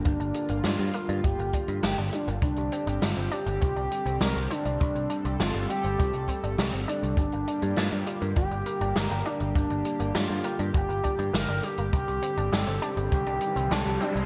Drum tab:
HH |xxxxxxxxxxxxxxxx|xxxxxxxxxxxxxxxx|xxxxxxxxxxxxxxxx|xxxxxxxxxxxxxxxx|
SD |----o-------o---|----o-------o---|----o-------o---|----o-------o---|
BD |o-------o-o-----|o-------o-------|o-------o-o-----|o-------o-------|

HH |xxxxxxxxxxxxxxxx|xxxxxxxxxxxxxxxx|
SD |----o-------o---|----o-------o---|
BD |o-------o-o-----|o-------o-------|